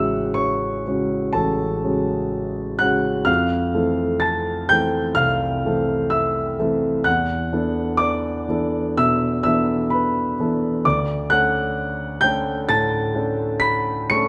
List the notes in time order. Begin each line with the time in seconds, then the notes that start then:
Already playing: A1 C#3 G#3 C#4 F#4 E5 F#5 E6 F#6
0.34 C#5 C#6
0.86 C#3 G#3 C#4 F#4
1.33 A1 A4 A5
1.84 C#3 G#3 C#4 F#4
2.79 C#3 G#3 C#4 F#4 F#5 F#6
3.25 F2 F5 F6
3.74 E3 A3 C4 A4
4.20 A5 A6
4.69 E3 A3 C4 A4 G5 G6
5.15 C2 F5 F6
5.65 E3 A3 C4 A4
6.10 E5 E6
6.59 E3 A3 C4 A4
7.04 E2 F#5 F#6
7.52 E3 B3 D4 A4
7.97 D5 D6
8.48 E3 B3 D4 A4
8.97 B2 E5 E6
9.43 E3 B3 D4 A4 E5 E6
9.90 B4 B5
10.40 E3 B3 D4 A4
10.85 D2 D5 D6
11.30 A3 C#4 D4 A4 F#5 F#6
12.21 A3 C#4 D4 A4 G5 G6
12.69 A2 A5 A6
13.14 A3 C#4 D4 A4
13.60 B5 B6
14.10 A3 C#4 D4 A4 C#6 C#7